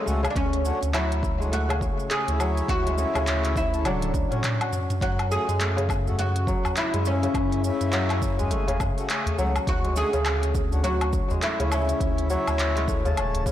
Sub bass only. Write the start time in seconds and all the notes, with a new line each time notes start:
0.07 C#2
0.35 D2
0.82 D2
2.28 D2
2.69 D2
3.15 D2
3.85 D1
4.14 D2
5.01 F#2
5.48 F#2
6.94 F#2
7.34 F#2
7.81 F#2
8.51 F#1
8.80 F#2
9.38 C#2
9.67 D2
10.14 D2
11.60 D2
12.01 D2
12.47 D2
13.18 D1
13.46 D2